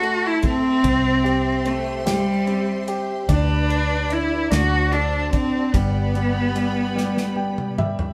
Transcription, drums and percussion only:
0.03 ride soft
0.42 kick medium
0.42 ride medium
0.84 kick loud
0.84 ride medium
1.26 ride soft
1.65 ride medium
2.07 snare loud
2.07 ride medium
2.47 ride soft
2.88 ride medium
3.29 kick loud
3.29 ride medium
3.70 ride soft
4.10 ride medium
4.51 snare loud
4.51 ride medium
4.92 ride soft
5.33 kick medium
5.33 ride medium
5.74 kick loud
5.74 ride medium
6.15 ride soft
6.56 ride medium
6.98 snare medium
7.17 snare medium
7.58 mid tom medium
7.78 mid tom loud
7.99 floor tom medium

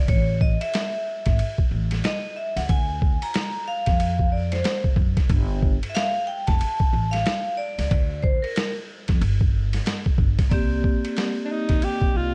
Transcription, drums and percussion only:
0.08 kick medium
0.08 ride medium
0.41 kick loud
0.61 ride medium
0.74 snare loud
0.74 hi-hat pedal medium
0.74 ride medium
1.26 kick medium
1.26 snare soft
1.26 ride medium
1.39 ride medium
1.58 kick medium
1.91 snare soft
1.91 ride medium
2.04 snare loud
2.04 hi-hat pedal soft
2.04 ride medium
2.56 snare soft
2.56 ride medium
2.69 kick loud
2.69 ride medium
3.02 kick medium
3.22 ride medium
3.34 snare loud
3.34 hi-hat pedal medium
3.34 ride medium
3.86 kick medium
3.86 snare soft
3.86 ride medium
4.00 ride medium
4.19 kick medium
4.52 snare soft
4.52 ride medium
4.64 snare loud
4.64 hi-hat pedal soft
4.64 ride medium
4.84 kick medium
4.96 kick medium
5.17 kick loud
5.17 snare soft
5.17 ride medium
5.30 kick loud
5.30 ride medium
5.63 kick loud
5.83 ride medium
5.95 snare loud
5.95 hi-hat pedal medium
5.95 ride medium
6.47 kick medium
6.47 snare soft
6.47 ride medium
6.61 ride medium
6.80 kick medium
7.13 snare soft
7.13 ride medium
7.26 snare loud
7.26 hi-hat pedal medium
7.26 ride medium
7.78 snare soft
7.78 ride medium
7.91 kick loud
7.91 ride medium
8.24 kick loud
8.44 ride medium
8.56 snare loud
8.56 hi-hat pedal medium
8.56 ride medium
9.08 kick medium
9.08 snare soft
9.08 ride medium
9.22 ride medium
9.41 kick medium
9.73 snare soft
9.73 ride medium
9.86 snare loud
9.86 hi-hat pedal soft
9.86 ride medium
10.06 kick medium
10.18 kick loud
10.39 kick loud
10.39 snare soft
10.39 ride medium
10.52 kick loud
10.52 ride medium
10.84 kick medium
11.05 ride medium
11.17 snare loud
11.17 hi-hat pedal medium
11.17 ride medium
11.69 kick medium
11.69 snare soft
11.69 ride medium
11.82 ride medium
12.02 kick medium

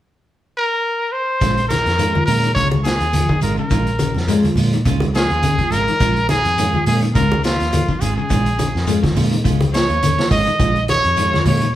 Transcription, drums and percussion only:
1.41 kick medium
1.41 snare soft
1.41 closed hi-hat medium
1.41 high conga soft
1.41 shekere medium
1.57 closed hi-hat soft
1.57 shekere soft
1.70 snare soft
1.70 closed hi-hat soft
1.70 high conga medium
1.70 shekere medium
1.86 snare soft
1.86 closed hi-hat soft
1.86 shekere soft
1.99 closed hi-hat medium
1.99 high conga soft
1.99 shekere medium
2.15 high conga medium
2.15 shekere soft
2.27 open hi-hat medium
2.27 low conga medium
2.27 shekere medium
2.43 closed hi-hat soft
2.43 shekere soft
2.56 kick medium
2.56 closed hi-hat medium
2.56 high conga soft
2.56 shekere medium
2.71 high conga medium
2.71 shekere soft
2.84 snare medium
2.84 closed hi-hat medium
2.84 shekere medium
3.00 closed hi-hat soft
3.00 shekere soft
3.13 closed hi-hat medium
3.13 high conga medium
3.13 shekere medium
3.28 kick medium
3.28 high conga medium
3.28 shekere soft
3.41 closed hi-hat medium
3.41 low conga medium
3.41 shekere medium
3.57 shekere soft
3.70 kick medium
3.70 closed hi-hat medium
3.70 high conga soft
3.70 shekere medium
3.87 closed hi-hat soft
3.87 shekere soft
3.99 closed hi-hat soft
3.99 high conga medium
3.99 shekere medium
4.14 snare soft
4.14 low conga medium
4.14 shekere soft
4.28 closed hi-hat medium
4.28 high conga soft
4.28 shekere medium
4.43 closed hi-hat soft
4.43 high conga medium
4.43 shekere soft
4.56 open hi-hat medium
4.56 high conga medium
4.56 low conga medium
4.56 shekere medium
4.72 closed hi-hat soft
4.72 shekere soft
4.85 kick medium
4.85 closed hi-hat medium
4.85 high conga soft
4.85 shekere medium
5.00 closed hi-hat soft
5.00 high conga medium
5.00 shekere soft
5.15 snare medium
5.15 closed hi-hat soft
5.15 shekere medium
5.30 closed hi-hat soft
5.30 shekere soft
5.43 closed hi-hat medium
5.43 high conga medium
5.43 shekere medium
5.58 kick medium
5.58 closed hi-hat soft
5.58 shekere soft
5.71 closed hi-hat soft
5.71 low conga medium
5.71 shekere medium
5.87 closed hi-hat soft
5.87 shekere soft
6.00 kick medium
6.00 closed hi-hat medium
6.00 shekere medium
6.16 closed hi-hat soft
6.16 shekere soft
6.29 closed hi-hat soft
6.29 high conga medium
6.29 shekere medium
6.45 closed hi-hat soft
6.45 low conga medium
6.45 shekere soft
6.58 closed hi-hat medium
6.58 high conga soft
6.58 shekere medium
6.73 high conga medium
6.73 shekere soft
6.86 open hi-hat medium
6.86 low conga medium
6.86 shekere medium
7.02 closed hi-hat soft
7.02 shekere soft
7.15 kick medium
7.15 closed hi-hat medium
7.15 shekere medium
7.31 high conga medium
7.31 shekere soft
7.44 snare medium
7.44 closed hi-hat medium
7.44 shekere medium
7.60 snare soft
7.60 closed hi-hat soft
7.60 shekere soft
7.73 closed hi-hat medium
7.73 high conga medium
7.73 shekere medium
7.88 kick medium
7.88 shekere soft
8.01 closed hi-hat medium
8.01 low conga medium
8.01 shekere medium
8.17 shekere soft
8.30 kick medium
8.30 closed hi-hat medium
8.30 shekere medium
8.46 closed hi-hat soft
8.46 shekere soft
8.59 closed hi-hat soft
8.59 high conga medium
8.59 shekere medium
8.75 snare soft
8.75 shekere soft
8.87 closed hi-hat medium
8.87 high conga soft
8.87 shekere medium
9.04 kick medium
9.04 snare soft
9.04 closed hi-hat soft
9.04 high conga medium
9.04 shekere soft
9.16 open hi-hat medium
9.16 high conga medium
9.16 low conga medium
9.16 shekere medium
9.32 closed hi-hat soft
9.32 shekere soft
9.45 kick medium
9.45 closed hi-hat medium
9.45 high conga soft
9.45 shekere medium
9.61 closed hi-hat soft
9.61 high conga medium
9.61 shekere soft
9.74 snare medium
9.74 closed hi-hat medium
9.74 shekere medium
9.89 closed hi-hat soft
9.89 shekere soft
10.02 closed hi-hat medium
10.02 high conga medium
10.02 shekere medium
10.18 snare medium
10.18 closed hi-hat soft
10.18 shekere soft
10.31 kick medium
10.31 open hi-hat medium
10.31 low conga medium
10.31 shekere medium
10.47 closed hi-hat soft
10.47 shekere soft
10.60 kick medium
10.60 closed hi-hat medium
10.60 high conga soft
10.60 shekere medium
10.75 closed hi-hat soft
10.75 shekere soft
10.88 closed hi-hat soft
10.88 high conga medium
10.88 shekere medium
11.04 closed hi-hat soft
11.04 shekere soft
11.17 closed hi-hat medium
11.17 high conga soft
11.17 shekere medium
11.33 snare soft
11.33 high conga medium
11.33 shekere soft
11.46 open hi-hat medium
11.46 high conga medium
11.46 low conga medium
11.46 shekere medium
11.61 closed hi-hat soft
11.61 shekere soft

